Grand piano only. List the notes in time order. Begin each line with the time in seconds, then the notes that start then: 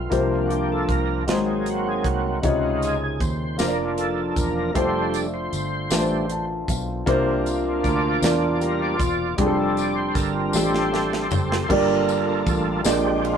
Already playing: B3 F4 A4 G5
0.10 C3 A#3 F4 G4 C5
1.27 G#2 G#3 D#4 F#4 C5
2.42 C3 C#3 D#4 F4 C#5
3.58 A#3 D4 F4 C5
3.67 D5
4.74 A3 D4 F4 C5
5.91 A3 D4 F4 B4
6.00 C5
6.32 A5
6.70 F5
7.06 C3 A#3 D4 F4 C5
8.22 A#3 D4 F4 D5
9.38 G3 D4 F4 G#4
9.47 A4
10.54 G3 D4 F4 A4
11.69 G2 A#3 D4 F4 G4 D5
12.83 A#2 A#3 D4 F4 G#4 D5